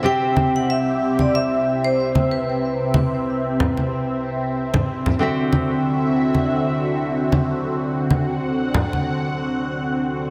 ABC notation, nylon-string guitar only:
X:1
M:4/4
L:1/8
Q:"Swing 16ths" 1/4=93
K:Clyd
V:1 name="Nylon-string guitar"
[C,CGe]8- | [C,CGe]8 | [D,CFe]8- | [D,CFe]4 z4 |]